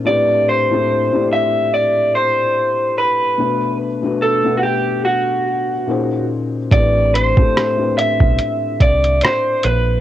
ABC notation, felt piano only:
X:1
M:4/4
L:1/16
Q:"Swing 16ths" 1/4=72
K:Ador
V:1 name="Felt piano"
[A,,A,CDGB]2 z [A,,A,CDGA]2 [A,,A,CDGd]6 z4 z | [B,,A,DFB]2 z [B,,A,DFB]2 [B,,A,DBf]6 z [_B,,_B,_D_E_Ac]3 z | [A,,A,CDGB]2 z [A,,A,CDGA]2 [A,,A,CDGB]6 z4 z |]